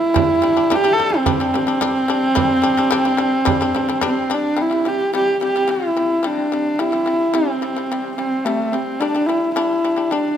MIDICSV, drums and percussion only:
0, 0, Header, 1, 2, 480
1, 0, Start_track
1, 0, Tempo, 552486
1, 142, Time_signature, 4, 2, 24, 8
1, 9011, End_track
2, 0, Start_track
2, 0, Title_t, "Frame drum"
2, 138, Note_on_c, 9, 64, 74
2, 225, Note_off_c, 9, 64, 0
2, 500, Note_on_c, 9, 64, 21
2, 587, Note_off_c, 9, 64, 0
2, 625, Note_on_c, 9, 64, 55
2, 712, Note_off_c, 9, 64, 0
2, 866, Note_on_c, 9, 64, 23
2, 953, Note_off_c, 9, 64, 0
2, 1097, Note_on_c, 9, 64, 65
2, 1184, Note_off_c, 9, 64, 0
2, 1338, Note_on_c, 9, 64, 48
2, 1425, Note_off_c, 9, 64, 0
2, 1456, Note_on_c, 9, 64, 22
2, 1542, Note_off_c, 9, 64, 0
2, 1575, Note_on_c, 9, 64, 51
2, 1662, Note_off_c, 9, 64, 0
2, 2058, Note_on_c, 9, 64, 60
2, 2145, Note_off_c, 9, 64, 0
2, 2410, Note_on_c, 9, 64, 19
2, 2497, Note_off_c, 9, 64, 0
2, 2538, Note_on_c, 9, 64, 51
2, 2625, Note_off_c, 9, 64, 0
2, 2775, Note_on_c, 9, 64, 20
2, 2862, Note_off_c, 9, 64, 0
2, 3016, Note_on_c, 9, 64, 66
2, 3103, Note_off_c, 9, 64, 0
2, 3254, Note_on_c, 9, 64, 51
2, 3341, Note_off_c, 9, 64, 0
2, 3377, Note_on_c, 9, 64, 21
2, 3464, Note_off_c, 9, 64, 0
2, 3491, Note_on_c, 9, 64, 53
2, 3578, Note_off_c, 9, 64, 0
2, 9011, End_track
0, 0, End_of_file